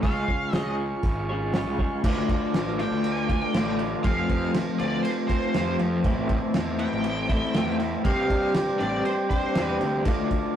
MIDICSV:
0, 0, Header, 1, 6, 480
1, 0, Start_track
1, 0, Tempo, 501672
1, 25, Time_signature, 4, 2, 24, 8
1, 10104, End_track
2, 0, Start_track
2, 0, Title_t, "Lead electric guitar"
2, 0, Program_c, 0, 29
2, 28, Note_on_c, 0, 77, 89
2, 535, Note_off_c, 0, 77, 0
2, 535, Note_on_c, 0, 75, 89
2, 709, Note_off_c, 0, 75, 0
2, 2680, Note_on_c, 0, 79, 106
2, 3595, Note_off_c, 0, 79, 0
2, 3863, Note_on_c, 0, 77, 103
2, 4311, Note_off_c, 0, 77, 0
2, 4579, Note_on_c, 0, 74, 103
2, 4806, Note_off_c, 0, 74, 0
2, 4810, Note_on_c, 0, 72, 97
2, 4877, Note_off_c, 0, 72, 0
2, 5051, Note_on_c, 0, 72, 86
2, 5504, Note_off_c, 0, 72, 0
2, 6504, Note_on_c, 0, 79, 106
2, 7425, Note_off_c, 0, 79, 0
2, 7700, Note_on_c, 0, 77, 107
2, 8148, Note_off_c, 0, 77, 0
2, 8411, Note_on_c, 0, 74, 99
2, 8655, Note_off_c, 0, 74, 0
2, 8659, Note_on_c, 0, 72, 94
2, 8724, Note_off_c, 0, 72, 0
2, 8895, Note_on_c, 0, 72, 75
2, 9230, Note_off_c, 0, 72, 0
2, 9230, Note_on_c, 0, 71, 75
2, 9345, Note_off_c, 0, 71, 0
2, 10104, End_track
3, 0, Start_track
3, 0, Title_t, "Transistor combo organ"
3, 0, Program_c, 1, 18
3, 0, Note_on_c, 1, 73, 60
3, 36, Note_on_c, 1, 85, 69
3, 40, Note_on_c, 1, 77, 63
3, 42, Note_on_c, 1, 68, 65
3, 1916, Note_off_c, 1, 73, 0
3, 1933, Note_off_c, 1, 85, 0
3, 1935, Note_off_c, 1, 77, 0
3, 1936, Note_off_c, 1, 68, 0
3, 1954, Note_on_c, 1, 65, 66
3, 1954, Note_on_c, 1, 74, 63
3, 1955, Note_on_c, 1, 81, 73
3, 1957, Note_on_c, 1, 69, 62
3, 3851, Note_off_c, 1, 74, 0
3, 3875, Note_on_c, 1, 72, 64
3, 5750, Note_off_c, 1, 65, 0
3, 5751, Note_off_c, 1, 81, 0
3, 5791, Note_on_c, 1, 81, 77
3, 5792, Note_on_c, 1, 64, 74
3, 7670, Note_off_c, 1, 69, 0
3, 7688, Note_off_c, 1, 64, 0
3, 7688, Note_off_c, 1, 81, 0
3, 7707, Note_on_c, 1, 62, 68
3, 7708, Note_on_c, 1, 79, 83
3, 7709, Note_on_c, 1, 67, 68
3, 9588, Note_off_c, 1, 72, 0
3, 9605, Note_off_c, 1, 62, 0
3, 9605, Note_off_c, 1, 79, 0
3, 9606, Note_off_c, 1, 67, 0
3, 9635, Note_on_c, 1, 69, 63
3, 9639, Note_on_c, 1, 74, 65
3, 9640, Note_on_c, 1, 65, 66
3, 9640, Note_on_c, 1, 81, 75
3, 10104, Note_off_c, 1, 65, 0
3, 10104, Note_off_c, 1, 69, 0
3, 10104, Note_off_c, 1, 74, 0
3, 10104, Note_off_c, 1, 81, 0
3, 10104, End_track
4, 0, Start_track
4, 0, Title_t, "Clean electric guitar"
4, 0, Program_c, 2, 27
4, 23, Note_on_c, 2, 49, 91
4, 30, Note_on_c, 2, 56, 87
4, 35, Note_on_c, 2, 61, 83
4, 42, Note_on_c, 2, 65, 83
4, 47, Note_on_c, 2, 68, 91
4, 49, Note_on_c, 2, 73, 94
4, 254, Note_off_c, 2, 73, 0
4, 264, Note_off_c, 2, 68, 0
4, 265, Note_on_c, 2, 73, 61
4, 274, Note_off_c, 2, 65, 0
4, 276, Note_on_c, 2, 68, 53
4, 278, Note_off_c, 2, 61, 0
4, 286, Note_on_c, 2, 65, 53
4, 290, Note_on_c, 2, 61, 51
4, 492, Note_off_c, 2, 61, 0
4, 503, Note_off_c, 2, 65, 0
4, 503, Note_on_c, 2, 61, 63
4, 505, Note_off_c, 2, 49, 0
4, 508, Note_off_c, 2, 56, 0
4, 510, Note_off_c, 2, 68, 0
4, 514, Note_on_c, 2, 65, 65
4, 520, Note_off_c, 2, 73, 0
4, 521, Note_on_c, 2, 68, 73
4, 531, Note_on_c, 2, 73, 80
4, 1225, Note_off_c, 2, 73, 0
4, 1232, Note_off_c, 2, 68, 0
4, 1236, Note_on_c, 2, 73, 66
4, 1244, Note_off_c, 2, 65, 0
4, 1244, Note_on_c, 2, 68, 67
4, 1254, Note_off_c, 2, 61, 0
4, 1256, Note_on_c, 2, 65, 59
4, 1265, Note_on_c, 2, 61, 55
4, 1468, Note_on_c, 2, 49, 88
4, 1470, Note_off_c, 2, 61, 0
4, 1472, Note_off_c, 2, 65, 0
4, 1472, Note_on_c, 2, 56, 90
4, 1480, Note_off_c, 2, 68, 0
4, 1481, Note_on_c, 2, 61, 96
4, 1484, Note_off_c, 2, 73, 0
4, 1484, Note_on_c, 2, 65, 91
4, 1492, Note_on_c, 2, 68, 87
4, 1496, Note_on_c, 2, 73, 92
4, 1700, Note_off_c, 2, 73, 0
4, 1708, Note_off_c, 2, 68, 0
4, 1712, Note_on_c, 2, 73, 67
4, 1719, Note_off_c, 2, 65, 0
4, 1720, Note_on_c, 2, 68, 63
4, 1725, Note_off_c, 2, 61, 0
4, 1731, Note_on_c, 2, 65, 55
4, 1737, Note_on_c, 2, 61, 56
4, 1933, Note_off_c, 2, 49, 0
4, 1935, Note_off_c, 2, 56, 0
4, 1935, Note_off_c, 2, 73, 0
4, 1939, Note_off_c, 2, 68, 0
4, 1945, Note_off_c, 2, 65, 0
4, 1945, Note_on_c, 2, 50, 81
4, 1947, Note_off_c, 2, 61, 0
4, 1958, Note_on_c, 2, 57, 88
4, 1967, Note_on_c, 2, 62, 94
4, 1977, Note_on_c, 2, 65, 101
4, 2662, Note_off_c, 2, 65, 0
4, 2666, Note_on_c, 2, 65, 74
4, 2669, Note_off_c, 2, 62, 0
4, 2681, Note_on_c, 2, 62, 65
4, 2687, Note_off_c, 2, 57, 0
4, 2691, Note_on_c, 2, 57, 56
4, 2906, Note_off_c, 2, 50, 0
4, 3131, Note_off_c, 2, 65, 0
4, 3142, Note_on_c, 2, 65, 68
4, 3151, Note_off_c, 2, 62, 0
4, 3162, Note_on_c, 2, 62, 57
4, 3168, Note_off_c, 2, 57, 0
4, 3172, Note_on_c, 2, 57, 58
4, 3383, Note_on_c, 2, 50, 93
4, 3393, Note_off_c, 2, 57, 0
4, 3395, Note_off_c, 2, 62, 0
4, 3397, Note_on_c, 2, 57, 100
4, 3403, Note_off_c, 2, 65, 0
4, 3407, Note_on_c, 2, 62, 90
4, 3415, Note_on_c, 2, 65, 96
4, 3612, Note_off_c, 2, 65, 0
4, 3623, Note_on_c, 2, 65, 72
4, 3627, Note_off_c, 2, 62, 0
4, 3639, Note_on_c, 2, 62, 68
4, 3647, Note_off_c, 2, 57, 0
4, 3650, Note_on_c, 2, 57, 51
4, 3850, Note_off_c, 2, 50, 0
4, 3850, Note_off_c, 2, 65, 0
4, 3858, Note_off_c, 2, 62, 0
4, 3862, Note_on_c, 2, 53, 87
4, 3869, Note_off_c, 2, 57, 0
4, 3873, Note_on_c, 2, 57, 90
4, 3883, Note_on_c, 2, 60, 102
4, 3890, Note_on_c, 2, 65, 99
4, 4577, Note_off_c, 2, 65, 0
4, 4588, Note_on_c, 2, 65, 71
4, 4601, Note_off_c, 2, 60, 0
4, 4605, Note_on_c, 2, 60, 65
4, 4614, Note_off_c, 2, 57, 0
4, 4618, Note_on_c, 2, 57, 61
4, 4823, Note_off_c, 2, 53, 0
4, 5056, Note_off_c, 2, 65, 0
4, 5067, Note_on_c, 2, 65, 73
4, 5075, Note_off_c, 2, 60, 0
4, 5079, Note_on_c, 2, 60, 65
4, 5082, Note_off_c, 2, 57, 0
4, 5094, Note_on_c, 2, 57, 60
4, 5304, Note_on_c, 2, 53, 96
4, 5305, Note_off_c, 2, 57, 0
4, 5317, Note_on_c, 2, 57, 93
4, 5322, Note_off_c, 2, 65, 0
4, 5324, Note_off_c, 2, 60, 0
4, 5328, Note_on_c, 2, 60, 100
4, 5334, Note_on_c, 2, 65, 101
4, 5526, Note_off_c, 2, 65, 0
4, 5538, Note_on_c, 2, 65, 70
4, 5553, Note_off_c, 2, 60, 0
4, 5555, Note_off_c, 2, 57, 0
4, 5557, Note_on_c, 2, 60, 65
4, 5566, Note_on_c, 2, 57, 54
4, 5767, Note_off_c, 2, 65, 0
4, 5770, Note_off_c, 2, 53, 0
4, 5780, Note_on_c, 2, 45, 88
4, 5781, Note_off_c, 2, 57, 0
4, 5785, Note_on_c, 2, 52, 95
4, 5793, Note_off_c, 2, 60, 0
4, 5794, Note_on_c, 2, 57, 98
4, 5797, Note_on_c, 2, 60, 93
4, 5806, Note_on_c, 2, 64, 97
4, 6480, Note_off_c, 2, 64, 0
4, 6492, Note_on_c, 2, 64, 78
4, 6505, Note_off_c, 2, 60, 0
4, 6508, Note_off_c, 2, 57, 0
4, 6509, Note_on_c, 2, 60, 72
4, 6520, Note_on_c, 2, 57, 62
4, 6742, Note_off_c, 2, 45, 0
4, 6744, Note_off_c, 2, 52, 0
4, 6964, Note_off_c, 2, 64, 0
4, 6975, Note_on_c, 2, 64, 81
4, 6982, Note_off_c, 2, 60, 0
4, 6991, Note_off_c, 2, 57, 0
4, 6994, Note_on_c, 2, 60, 62
4, 7002, Note_on_c, 2, 57, 55
4, 7218, Note_on_c, 2, 45, 91
4, 7219, Note_off_c, 2, 57, 0
4, 7227, Note_on_c, 2, 52, 86
4, 7231, Note_off_c, 2, 60, 0
4, 7231, Note_on_c, 2, 57, 106
4, 7236, Note_off_c, 2, 64, 0
4, 7242, Note_on_c, 2, 60, 95
4, 7247, Note_on_c, 2, 64, 90
4, 7439, Note_off_c, 2, 64, 0
4, 7450, Note_on_c, 2, 64, 71
4, 7456, Note_off_c, 2, 60, 0
4, 7468, Note_on_c, 2, 60, 58
4, 7470, Note_off_c, 2, 57, 0
4, 7481, Note_on_c, 2, 57, 50
4, 7683, Note_off_c, 2, 64, 0
4, 7686, Note_off_c, 2, 45, 0
4, 7689, Note_off_c, 2, 52, 0
4, 7691, Note_off_c, 2, 60, 0
4, 7693, Note_on_c, 2, 48, 90
4, 7698, Note_off_c, 2, 57, 0
4, 7705, Note_on_c, 2, 55, 96
4, 7712, Note_on_c, 2, 60, 95
4, 7720, Note_on_c, 2, 62, 110
4, 8412, Note_off_c, 2, 62, 0
4, 8416, Note_on_c, 2, 62, 74
4, 8421, Note_off_c, 2, 60, 0
4, 8432, Note_off_c, 2, 55, 0
4, 8432, Note_on_c, 2, 60, 69
4, 8443, Note_on_c, 2, 55, 64
4, 8658, Note_off_c, 2, 48, 0
4, 8882, Note_off_c, 2, 62, 0
4, 8893, Note_on_c, 2, 62, 77
4, 8896, Note_off_c, 2, 60, 0
4, 8908, Note_on_c, 2, 60, 57
4, 8910, Note_off_c, 2, 55, 0
4, 8921, Note_on_c, 2, 55, 58
4, 9131, Note_on_c, 2, 48, 87
4, 9133, Note_off_c, 2, 55, 0
4, 9142, Note_off_c, 2, 60, 0
4, 9144, Note_on_c, 2, 55, 85
4, 9145, Note_off_c, 2, 62, 0
4, 9153, Note_on_c, 2, 60, 87
4, 9157, Note_on_c, 2, 62, 98
4, 9367, Note_off_c, 2, 62, 0
4, 9378, Note_on_c, 2, 62, 66
4, 9380, Note_off_c, 2, 60, 0
4, 9390, Note_off_c, 2, 55, 0
4, 9391, Note_on_c, 2, 60, 58
4, 9402, Note_on_c, 2, 55, 54
4, 9602, Note_off_c, 2, 48, 0
4, 9606, Note_off_c, 2, 62, 0
4, 9612, Note_off_c, 2, 60, 0
4, 9614, Note_on_c, 2, 50, 85
4, 9617, Note_off_c, 2, 55, 0
4, 9626, Note_on_c, 2, 57, 88
4, 9632, Note_on_c, 2, 62, 95
4, 9641, Note_on_c, 2, 65, 93
4, 10104, Note_off_c, 2, 50, 0
4, 10104, Note_off_c, 2, 57, 0
4, 10104, Note_off_c, 2, 62, 0
4, 10104, Note_off_c, 2, 65, 0
4, 10104, End_track
5, 0, Start_track
5, 0, Title_t, "Picked electric bass"
5, 0, Program_c, 3, 34
5, 34, Note_on_c, 3, 37, 90
5, 216, Note_off_c, 3, 37, 0
5, 509, Note_on_c, 3, 37, 91
5, 879, Note_off_c, 3, 37, 0
5, 988, Note_on_c, 3, 32, 97
5, 1599, Note_off_c, 3, 32, 0
5, 1599, Note_on_c, 3, 36, 83
5, 1780, Note_off_c, 3, 36, 0
5, 1950, Note_on_c, 3, 38, 88
5, 2042, Note_off_c, 3, 38, 0
5, 2071, Note_on_c, 3, 38, 83
5, 2255, Note_off_c, 3, 38, 0
5, 2428, Note_on_c, 3, 33, 86
5, 2706, Note_off_c, 3, 33, 0
5, 2786, Note_on_c, 3, 38, 89
5, 3250, Note_off_c, 3, 38, 0
5, 3389, Note_on_c, 3, 33, 80
5, 3759, Note_off_c, 3, 33, 0
5, 3874, Note_on_c, 3, 41, 94
5, 4056, Note_off_c, 3, 41, 0
5, 4110, Note_on_c, 3, 41, 82
5, 4294, Note_off_c, 3, 41, 0
5, 4595, Note_on_c, 3, 38, 84
5, 4777, Note_off_c, 3, 38, 0
5, 5313, Note_on_c, 3, 41, 92
5, 5495, Note_off_c, 3, 41, 0
5, 5550, Note_on_c, 3, 41, 94
5, 5733, Note_off_c, 3, 41, 0
5, 5783, Note_on_c, 3, 33, 100
5, 5877, Note_off_c, 3, 33, 0
5, 5909, Note_on_c, 3, 33, 91
5, 6093, Note_off_c, 3, 33, 0
5, 6269, Note_on_c, 3, 40, 97
5, 6545, Note_off_c, 3, 40, 0
5, 6624, Note_on_c, 3, 33, 88
5, 7088, Note_off_c, 3, 33, 0
5, 7222, Note_on_c, 3, 40, 81
5, 7593, Note_off_c, 3, 40, 0
5, 7699, Note_on_c, 3, 36, 93
5, 7886, Note_off_c, 3, 36, 0
5, 7943, Note_on_c, 3, 36, 83
5, 8129, Note_off_c, 3, 36, 0
5, 8429, Note_on_c, 3, 33, 86
5, 8612, Note_off_c, 3, 33, 0
5, 9149, Note_on_c, 3, 40, 70
5, 9362, Note_off_c, 3, 40, 0
5, 9388, Note_on_c, 3, 38, 87
5, 9601, Note_off_c, 3, 38, 0
5, 9624, Note_on_c, 3, 38, 98
5, 9716, Note_off_c, 3, 38, 0
5, 9747, Note_on_c, 3, 38, 86
5, 9930, Note_off_c, 3, 38, 0
5, 10104, End_track
6, 0, Start_track
6, 0, Title_t, "Drums"
6, 28, Note_on_c, 9, 46, 51
6, 29, Note_on_c, 9, 36, 102
6, 124, Note_off_c, 9, 46, 0
6, 125, Note_off_c, 9, 36, 0
6, 269, Note_on_c, 9, 36, 69
6, 365, Note_off_c, 9, 36, 0
6, 507, Note_on_c, 9, 46, 56
6, 510, Note_on_c, 9, 38, 112
6, 602, Note_off_c, 9, 46, 0
6, 605, Note_off_c, 9, 38, 0
6, 986, Note_on_c, 9, 46, 48
6, 989, Note_on_c, 9, 36, 101
6, 1082, Note_off_c, 9, 46, 0
6, 1085, Note_off_c, 9, 36, 0
6, 1468, Note_on_c, 9, 46, 49
6, 1471, Note_on_c, 9, 38, 104
6, 1564, Note_off_c, 9, 46, 0
6, 1567, Note_off_c, 9, 38, 0
6, 1710, Note_on_c, 9, 36, 75
6, 1806, Note_off_c, 9, 36, 0
6, 1950, Note_on_c, 9, 36, 111
6, 1951, Note_on_c, 9, 49, 107
6, 1951, Note_on_c, 9, 57, 74
6, 2046, Note_off_c, 9, 36, 0
6, 2046, Note_off_c, 9, 49, 0
6, 2046, Note_off_c, 9, 57, 0
6, 2191, Note_on_c, 9, 36, 86
6, 2193, Note_on_c, 9, 57, 56
6, 2287, Note_off_c, 9, 36, 0
6, 2289, Note_off_c, 9, 57, 0
6, 2432, Note_on_c, 9, 57, 74
6, 2434, Note_on_c, 9, 38, 106
6, 2527, Note_off_c, 9, 57, 0
6, 2530, Note_off_c, 9, 38, 0
6, 2557, Note_on_c, 9, 38, 31
6, 2653, Note_off_c, 9, 38, 0
6, 2674, Note_on_c, 9, 57, 54
6, 2677, Note_on_c, 9, 38, 30
6, 2770, Note_off_c, 9, 57, 0
6, 2773, Note_off_c, 9, 38, 0
6, 2908, Note_on_c, 9, 57, 70
6, 3003, Note_off_c, 9, 57, 0
6, 3151, Note_on_c, 9, 36, 80
6, 3151, Note_on_c, 9, 57, 55
6, 3247, Note_off_c, 9, 36, 0
6, 3247, Note_off_c, 9, 57, 0
6, 3390, Note_on_c, 9, 57, 79
6, 3393, Note_on_c, 9, 38, 108
6, 3485, Note_off_c, 9, 57, 0
6, 3488, Note_off_c, 9, 38, 0
6, 3627, Note_on_c, 9, 57, 55
6, 3723, Note_off_c, 9, 57, 0
6, 3867, Note_on_c, 9, 57, 78
6, 3870, Note_on_c, 9, 36, 111
6, 3962, Note_off_c, 9, 57, 0
6, 3966, Note_off_c, 9, 36, 0
6, 4108, Note_on_c, 9, 36, 80
6, 4108, Note_on_c, 9, 57, 58
6, 4204, Note_off_c, 9, 36, 0
6, 4204, Note_off_c, 9, 57, 0
6, 4347, Note_on_c, 9, 57, 89
6, 4350, Note_on_c, 9, 38, 112
6, 4443, Note_off_c, 9, 57, 0
6, 4446, Note_off_c, 9, 38, 0
6, 4588, Note_on_c, 9, 57, 61
6, 4683, Note_off_c, 9, 57, 0
6, 4828, Note_on_c, 9, 57, 79
6, 4924, Note_off_c, 9, 57, 0
6, 5064, Note_on_c, 9, 57, 59
6, 5066, Note_on_c, 9, 36, 80
6, 5160, Note_off_c, 9, 57, 0
6, 5162, Note_off_c, 9, 36, 0
6, 5303, Note_on_c, 9, 57, 77
6, 5306, Note_on_c, 9, 38, 106
6, 5399, Note_off_c, 9, 57, 0
6, 5402, Note_off_c, 9, 38, 0
6, 5543, Note_on_c, 9, 57, 58
6, 5639, Note_off_c, 9, 57, 0
6, 5781, Note_on_c, 9, 57, 80
6, 5783, Note_on_c, 9, 36, 113
6, 5876, Note_off_c, 9, 57, 0
6, 5879, Note_off_c, 9, 36, 0
6, 6020, Note_on_c, 9, 57, 55
6, 6023, Note_on_c, 9, 36, 82
6, 6115, Note_off_c, 9, 57, 0
6, 6119, Note_off_c, 9, 36, 0
6, 6258, Note_on_c, 9, 57, 76
6, 6261, Note_on_c, 9, 38, 114
6, 6353, Note_off_c, 9, 57, 0
6, 6356, Note_off_c, 9, 38, 0
6, 6498, Note_on_c, 9, 57, 54
6, 6594, Note_off_c, 9, 57, 0
6, 6734, Note_on_c, 9, 57, 73
6, 6829, Note_off_c, 9, 57, 0
6, 6979, Note_on_c, 9, 57, 60
6, 6980, Note_on_c, 9, 36, 89
6, 7074, Note_off_c, 9, 57, 0
6, 7076, Note_off_c, 9, 36, 0
6, 7217, Note_on_c, 9, 57, 71
6, 7220, Note_on_c, 9, 38, 103
6, 7313, Note_off_c, 9, 57, 0
6, 7316, Note_off_c, 9, 38, 0
6, 7459, Note_on_c, 9, 57, 57
6, 7555, Note_off_c, 9, 57, 0
6, 7699, Note_on_c, 9, 57, 78
6, 7701, Note_on_c, 9, 36, 113
6, 7794, Note_off_c, 9, 57, 0
6, 7796, Note_off_c, 9, 36, 0
6, 7940, Note_on_c, 9, 36, 79
6, 7942, Note_on_c, 9, 57, 62
6, 8036, Note_off_c, 9, 36, 0
6, 8037, Note_off_c, 9, 57, 0
6, 8174, Note_on_c, 9, 57, 88
6, 8177, Note_on_c, 9, 38, 125
6, 8270, Note_off_c, 9, 57, 0
6, 8273, Note_off_c, 9, 38, 0
6, 8303, Note_on_c, 9, 38, 31
6, 8399, Note_off_c, 9, 38, 0
6, 8422, Note_on_c, 9, 57, 57
6, 8425, Note_on_c, 9, 38, 29
6, 8518, Note_off_c, 9, 57, 0
6, 8521, Note_off_c, 9, 38, 0
6, 8661, Note_on_c, 9, 57, 78
6, 8757, Note_off_c, 9, 57, 0
6, 8902, Note_on_c, 9, 36, 80
6, 8904, Note_on_c, 9, 57, 62
6, 8998, Note_off_c, 9, 36, 0
6, 8999, Note_off_c, 9, 57, 0
6, 9140, Note_on_c, 9, 57, 86
6, 9143, Note_on_c, 9, 38, 105
6, 9236, Note_off_c, 9, 57, 0
6, 9238, Note_off_c, 9, 38, 0
6, 9383, Note_on_c, 9, 57, 55
6, 9479, Note_off_c, 9, 57, 0
6, 9617, Note_on_c, 9, 57, 80
6, 9623, Note_on_c, 9, 36, 108
6, 9713, Note_off_c, 9, 57, 0
6, 9718, Note_off_c, 9, 36, 0
6, 9862, Note_on_c, 9, 57, 57
6, 9863, Note_on_c, 9, 36, 81
6, 9958, Note_off_c, 9, 36, 0
6, 9958, Note_off_c, 9, 57, 0
6, 10104, End_track
0, 0, End_of_file